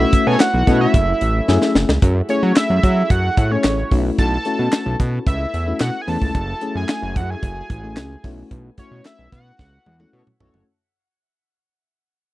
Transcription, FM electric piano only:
0.00 0.47 A3 medium
0.00 0.47 C#4 medium
0.00 0.47 E4 medium
0.00 0.47 F#4 medium
0.67 0.94 A3 loud
0.67 0.94 C#4 medium
0.67 0.94 E4 medium
0.67 0.94 F#4 medium
1.48 1.96 A3 medium
1.48 1.96 C#4 medium
1.48 1.96 E4 medium
1.48 1.96 G#4 loud
2.29 3.05 A3 medium
2.29 3.05 C#4 medium
2.29 3.05 E4 medium
2.29 3.06 G#4 medium
3.51 3.79 A3 medium
3.51 3.80 C#4 medium
3.51 3.80 E4 medium
3.51 3.80 G#4 medium
3.91 4.35 A3 medium
3.91 4.35 C#4 medium
3.91 3.98 D#4 medium
3.91 4.35 F#4 medium
3.98 4.38 E4 medium
4.45 5.21 A3 medium
4.45 5.22 C#4 medium
4.45 5.22 E4 medium
4.45 5.22 F#4 medium
5.67 5.96 A3 medium
5.67 5.96 C#4 medium
5.67 5.96 E4 medium
5.67 5.96 F#4 medium
6.07 6.35 A3 medium
6.07 6.35 C#4 medium
6.07 6.35 E4 medium
6.07 6.35 A4 medium
6.61 7.38 A3 medium
6.61 7.38 C#4 medium
6.61 7.38 E4 medium
6.61 7.38 G#4 medium
7.83 8.12 A3 medium
7.83 8.12 C#4 medium
7.83 8.12 E4 medium
7.83 8.12 G#4 medium
8.24 8.67 A3 medium
8.24 8.67 C#4 medium
8.24 8.67 E4 medium
8.24 8.68 F#4 loud
8.78 9.54 A3 medium
8.78 9.54 C#4 medium
8.78 9.54 E4 medium
8.78 9.54 F#4 medium
9.99 10.28 A3 medium
9.99 10.28 C#4 medium
9.99 10.28 E4 medium
9.99 10.28 F#4 loud
10.40 10.67 A3 medium
10.40 10.67 C#4 medium
10.40 10.67 E4 medium
10.40 10.68 F#4 loud

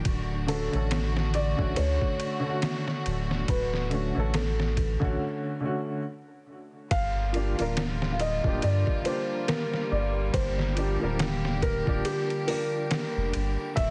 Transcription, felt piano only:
0.48 1.30 A4 medium
1.35 1.79 D5 loud
1.77 3.44 C#5 loud
3.50 4.37 B4 loud
4.35 5.23 A4 medium
6.91 8.11 F5 loud
8.12 8.19 F5 medium
8.20 8.64 D#5 loud
8.63 9.02 D5 medium
9.06 9.50 C5 medium
9.48 9.88 A#4 medium
9.92 10.36 D5 medium
10.34 11.16 C5 medium
11.63 12.02 A#4 loud
12.05 12.49 G4 loud
12.47 13.30 A#4 loud
13.76 13.90 E5 loud

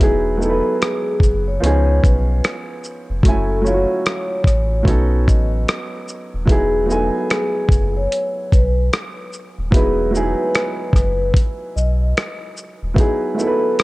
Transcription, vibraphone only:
0.00 0.37 G#4 medium
0.41 0.77 A4 medium
0.81 1.43 G#4 medium
1.48 2.00 C#5 medium
2.04 2.39 B4 medium
3.25 3.61 A4 medium
3.65 4.42 C#5 medium
4.47 4.83 C#5 medium
5.27 5.50 D#5 medium
6.49 6.85 G#4 medium
6.90 7.26 A4 medium
7.30 7.92 G#4 medium
7.97 8.52 C#5 medium
8.53 8.88 B4 medium
9.74 10.10 G#4 medium
10.14 10.91 B4 medium
10.95 11.31 B4 medium
11.76 11.98 D#5 medium
12.98 13.38 G#4 medium
13.38 13.74 A4 medium
13.79 13.83 G#4 medium

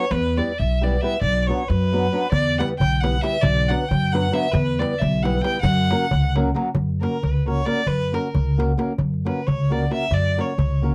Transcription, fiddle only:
0.00 0.13 C#5 loud
0.11 0.39 B4 loud
0.38 0.60 D5 medium
0.59 0.85 E5 medium
0.83 1.03 D5 medium
1.01 1.21 E5 loud
1.21 1.43 D5 loud
1.43 1.49 D5 medium
1.47 1.70 C#5 medium
1.68 2.31 B4 loud
2.32 2.57 D5 loud
2.59 2.68 F#5 medium
2.78 3.02 G5 loud
3.00 3.23 F#5 medium
3.22 3.43 E5 loud
3.42 3.70 D5 loud
3.69 3.90 F#5 medium
3.89 4.13 G5 loud
4.12 4.35 F#5 medium
4.34 4.54 E5 loud
4.52 4.81 B4 loud
4.80 5.00 D5 medium
4.99 5.24 E5 medium
5.23 5.43 F#5 medium
5.42 5.61 G5 loud
5.61 6.31 F#5 loud
7.01 7.24 A#4 medium
7.23 7.47 B4 medium
7.48 7.67 C#5 medium
7.65 7.89 D5 loud
7.87 8.16 B4 loud
8.14 8.59 A#4 medium
9.27 9.49 B4 medium
9.47 9.74 C#5 medium
9.72 9.91 D5 medium
9.93 10.15 E5 loud
10.13 10.42 D5 loud
10.41 10.84 C#5 medium

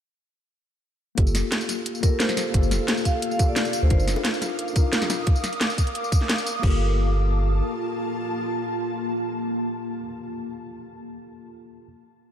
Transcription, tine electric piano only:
1.15 2.00 A#3 medium
1.15 2.01 F4 medium
1.15 2.01 G4 medium
1.20 2.02 A4 medium
2.01 2.50 A#3 medium
2.01 2.52 F4 medium
2.01 2.53 G4 medium
2.06 2.54 A4 medium
2.52 3.36 A#3 medium
2.52 3.37 F4 medium
2.52 3.38 G4 medium
2.57 3.39 A4 loud
3.37 3.87 A#3 medium
3.37 3.88 F4 medium
3.37 3.89 G4 medium
3.42 3.90 A4 loud
3.88 4.72 D4 medium
3.88 4.73 D#4 medium
3.88 4.74 F4 medium
3.93 4.75 A#4 medium
4.73 5.24 D4 medium
4.73 5.25 D#4 medium
4.73 5.25 F4 medium
4.78 5.26 A#4 loud
6.60 9.99 A#3 medium
6.60 10.02 F4 medium
6.64 10.04 G4 medium
6.64 10.07 A4 loud

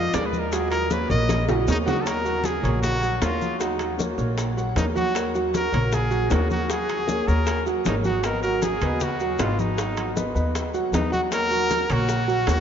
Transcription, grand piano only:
0.00 0.10 F4 medium
0.00 0.10 F5 medium
0.14 0.46 G#3 medium
0.14 0.46 G#4 medium
0.14 0.46 A#4 medium
0.53 0.84 F#3 medium
0.53 0.84 F#4 medium
0.53 0.85 F#5 medium
0.91 1.06 A#3 medium
0.91 1.06 A#4 medium
0.91 1.07 C#5 medium
1.09 1.41 A#3 medium
1.09 1.41 A#4 medium
1.09 1.41 C#5 medium
1.48 1.64 F#3 medium
1.48 1.64 F#4 medium
1.48 1.64 F#5 medium
1.68 1.84 A#3 medium
1.68 1.84 A#4 medium
1.68 1.84 C#5 medium
1.86 2.02 F#3 medium
1.86 2.02 F#4 loud
1.86 2.03 F#5 medium
2.05 2.21 A#3 medium
2.05 2.22 A#4 medium
2.05 2.22 C#5 medium
2.24 2.56 F#3 medium
2.24 2.57 F#4 medium
2.24 2.57 F#5 medium
2.63 2.95 A#3 medium
2.63 2.95 A#4 medium
2.63 2.95 C#5 medium
3.01 3.18 F#3 medium
3.01 3.18 F#4 medium
3.01 3.18 F#5 medium
3.22 3.53 A#3 medium
3.22 3.54 A#4 medium
3.22 3.54 C#5 medium
3.60 3.92 F#3 medium
3.60 3.92 F#4 medium
3.60 3.92 F#5 medium
3.97 4.14 A#3 medium
3.97 4.14 A#4 medium
3.97 4.15 C#5 medium
4.18 4.50 A#3 medium
4.18 4.50 A#4 medium
4.18 4.50 C#5 medium
4.57 4.73 F#3 medium
4.57 4.73 F#4 medium
4.57 4.73 F#5 medium
4.76 4.92 A#3 medium
4.76 4.93 A#4 medium
4.76 4.92 C#5 medium
4.95 5.11 F#3 medium
4.95 5.11 F#4 medium
4.95 5.12 F#5 loud
5.15 5.31 A#3 medium
5.15 5.31 A#4 medium
5.15 5.32 C#5 medium
5.35 5.66 F#3 medium
5.35 5.67 F#4 medium
5.35 5.67 F#5 medium
5.72 6.04 A#3 medium
5.72 6.04 A#4 medium
5.72 6.04 C#5 medium
6.10 6.27 F#3 medium
6.10 6.27 F#4 medium
6.10 6.27 F#5 medium
6.30 6.62 A#3 medium
6.30 6.62 A#4 medium
6.30 6.62 C#5 medium
6.68 7.00 F#3 medium
6.68 7.01 F#4 medium
6.68 7.01 F#5 medium
7.09 7.24 A#3 medium
7.09 7.24 A#4 medium
7.09 7.25 C#5 medium
7.27 7.59 A#3 medium
7.27 7.59 A#4 medium
7.27 7.59 C#5 medium
7.66 7.82 F#3 medium
7.66 7.82 F#4 medium
7.66 7.82 F#5 medium
7.87 8.02 A#3 medium
7.87 8.02 A#4 medium
7.87 8.02 C#5 medium
8.05 8.21 F#3 medium
8.05 8.21 F#4 medium
8.05 8.21 F#5 medium
8.25 8.40 B3 medium
8.25 8.40 B4 medium
8.25 8.41 D#5 medium
8.44 8.75 F#3 medium
8.44 8.75 F#4 medium
8.44 8.75 F#5 medium
8.83 9.14 B3 medium
8.83 9.14 B4 medium
8.83 9.14 D#5 medium
9.21 9.36 F#3 medium
9.21 9.36 F#4 medium
9.21 9.37 F#5 medium
9.39 9.71 B3 medium
9.39 9.71 B4 medium
9.39 9.71 D#5 medium
9.77 10.09 F#3 medium
9.77 10.09 F#4 medium
9.77 10.09 F#5 medium
10.16 10.32 B3 medium
10.16 10.32 B4 medium
10.16 10.32 D#5 medium
10.35 10.67 B3 medium
10.35 10.67 B4 medium
10.35 10.67 D#5 medium
10.74 10.90 F#3 medium
10.74 10.90 F#4 medium
10.74 10.90 F#5 medium
10.93 11.09 B3 medium
10.93 11.09 B4 medium
10.93 11.10 D#5 medium
11.12 11.28 F#3 medium
11.12 11.28 F#4 medium
11.12 11.28 F#5 loud
11.31 11.47 A#3 medium
11.31 11.47 A#4 medium
11.31 11.48 C#5 medium
11.51 11.83 F#3 medium
11.51 11.83 F#4 medium
11.51 11.83 F#5 medium
11.90 12.21 A#3 medium
11.90 12.21 A#4 medium
11.90 12.22 C#5 medium
12.28 12.44 F#3 medium
12.28 12.44 F#4 medium
12.28 12.44 F#5 medium
12.47 12.60 A#3 medium
12.47 12.60 A#4 medium
12.47 12.60 C#5 medium

